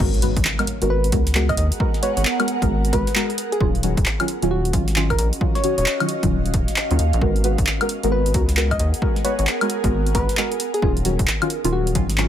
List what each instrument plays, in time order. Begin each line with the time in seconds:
0.00 analog synth bass G#1, synth stab G#3 B3 F#4 A#4, ambient pad B3, kick, crash, impact
0.14 closed hi-hat
0.22 synth stab G#3 B3 F#4 B4, open hi-hat
0.35 analog synth bass G#1, ambient pad A#4 F#5, kick, closed hi-hat
0.45 ambient pad G#4, clap
0.59 synth stab G#3 B3 F#4 A#4, open hi-hat, high woodblock
0.67 open hi-hat
0.82 analog synth bass G#1, synth stab G#3 B3 F#4 A#4, closed hi-hat
0.90 soft synth lead B4
1.04 closed hi-hat
1.12 analog synth bass C#2, synth stab G#3 B3 F#4 A#4, kick, open hi-hat
1.27 snare, closed hi-hat
1.35 synth stab G#3 B3 F#4 A#4, clap
1.49 soft synth lead D#5, kick, closed hi-hat, high woodblock
1.57 analog synth bass D#2, soft synth lead D#5, open hi-hat
1.72 closed hi-hat
1.80 synth stab G#3 B3 F#4 A#4, kick
1.94 snare, closed hi-hat
2.03 synth stab G#3 B3 F#4 B4, soft synth lead C#5, open hi-hat
2.17 analog synth bass G#1, soft synth lead C#5, closed hi-hat
2.25 clap
2.39 synth stab G#3 B3 F#4 A#4, open hi-hat, high woodblock
2.48 open hi-hat
2.62 analog synth bass G#1, synth stab G#3 B3 F#4 A#4, kick, closed hi-hat
2.85 closed hi-hat
2.93 analog synth bass G#1, synth stab G#3 B3 F#4 A#4, soft synth lead B4, kick, open hi-hat
3.07 snare, closed hi-hat
3.15 synth stab G#3 B3 F#4 A#4, clap
3.30 closed hi-hat
3.38 open hi-hat
3.52 soft synth lead G#4, open hi-hat
3.60 analog synth bass D#1, synth stab D#3 F#3 C#4 F4, ambient pad C#4, soft synth lead G#4, kick
3.75 closed hi-hat
3.81 synth stab D#3 F#3 C#4 F#4, ambient pad F#4, open hi-hat
3.97 analog synth bass D#1, kick, closed hi-hat
4.06 clap
4.18 synth stab D#3 F#3 C#4 F4, ambient pad D#5, open hi-hat, high woodblock
4.28 open hi-hat
4.42 analog synth bass D#1, synth stab D#3 F#3 C#4 F4, closed hi-hat
4.51 soft synth lead F#4
4.65 closed hi-hat
4.73 analog synth bass G#1, synth stab D#3 F#3 C#4 F4, kick, open hi-hat
4.83 ambient pad F5
4.88 snare, closed hi-hat
4.96 synth stab D#3 F#3 C#4 F4, clap
5.10 soft synth lead A#4, kick, closed hi-hat, high woodblock
5.18 analog synth bass A#1, soft synth lead A#4, open hi-hat
5.33 closed hi-hat
5.41 synth stab D#3 F#3 C#4 F4, kick
5.55 soft synth lead C#5, snare, closed hi-hat
5.64 synth stab D#3 F#3 C#4 F#4, open hi-hat
5.78 analog synth bass D#1, soft synth lead C#5, closed hi-hat
5.86 clap
6.00 synth stab D#3 F#3 C#4 F4, open hi-hat, high woodblock
6.09 open hi-hat
6.23 analog synth bass D#1, synth stab D#3 F#3 C#4 F4, kick, closed hi-hat
6.46 closed hi-hat
6.54 analog synth bass D#1, kick, open hi-hat
6.68 snare, closed hi-hat
6.76 clap
6.91 analog synth bass D#2, synth stab D#3 F#3 C#4 F4, closed hi-hat
6.99 analog synth bass D#2, open hi-hat
7.13 analog synth bass A#1, open hi-hat
7.22 analog synth bass G#1, synth stab G#3 B3 F#4 A#4, ambient pad B3, kick
7.32 ambient pad G#4, closed hi-hat
7.44 synth stab G#3 B3 F#4 B4, open hi-hat
7.52 ambient pad F#5
7.58 analog synth bass G#1, kick, closed hi-hat
7.67 clap
7.81 synth stab G#3 B3 F#4 A#4, open hi-hat, high woodblock
7.89 ambient pad A#4, open hi-hat
8.03 analog synth bass G#1, synth stab G#3 B3 F#4 A#4, closed hi-hat
8.12 soft synth lead B4
8.26 closed hi-hat
8.34 analog synth bass C#2, synth stab G#3 B3 F#4 A#4, kick, open hi-hat
8.49 snare, closed hi-hat
8.57 synth stab G#3 B3 F#4 A#4, clap
8.71 soft synth lead D#5, kick, closed hi-hat, high woodblock
8.79 analog synth bass D#2, soft synth lead D#5, open hi-hat
8.94 closed hi-hat
9.02 synth stab G#3 B3 F#4 A#4, kick
9.16 snare, closed hi-hat
9.25 synth stab G#3 B3 F#4 B4, soft synth lead C#5, open hi-hat
9.39 analog synth bass G#1, soft synth lead C#5, closed hi-hat
9.47 clap
9.61 synth stab G#3 B3 F#4 A#4, open hi-hat, high woodblock
9.70 open hi-hat
9.84 analog synth bass G#1, synth stab G#3 B3 F#4 A#4, kick, closed hi-hat
10.07 closed hi-hat
10.15 analog synth bass G#1, synth stab G#3 B3 F#4 A#4, soft synth lead B4, kick, open hi-hat
10.29 snare, closed hi-hat
10.37 synth stab G#3 B3 F#4 A#4, clap
10.52 closed hi-hat
10.60 open hi-hat
10.74 soft synth lead G#4, open hi-hat
10.82 analog synth bass D#1, synth stab D#3 F#3 C#4 F4, ambient pad D#4, soft synth lead G#4, kick
10.97 closed hi-hat
11.05 synth stab D#3 F#3 C#4 F#4, open hi-hat
11.19 analog synth bass D#1, ambient pad F5, kick, closed hi-hat
11.27 ambient pad F#4, clap
11.42 synth stab D#3 F#3 C#4 F4, open hi-hat, high woodblock
11.50 open hi-hat
11.64 analog synth bass D#1, synth stab D#3 F#3 C#4 F4, closed hi-hat
11.73 soft synth lead F#4, ambient pad C#5
11.87 closed hi-hat
11.95 analog synth bass G#1, synth stab D#3 F#3 C#4 F4, kick, open hi-hat
12.09 snare, closed hi-hat
12.18 synth stab D#3 F#3 C#4 F4, clap